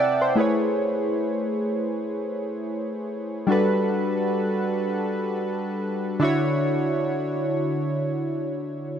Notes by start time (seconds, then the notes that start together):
Already playing: C3 C4 E4 E5 F#5 G5 A5
0.00 D5
0.22 C5
0.35 A3 E4 G#4 B4
0.40 C#5
3.47 G3 D4 F#4 A4
3.52 B4
6.20 D3 D4 E4 F#4
6.24 C#5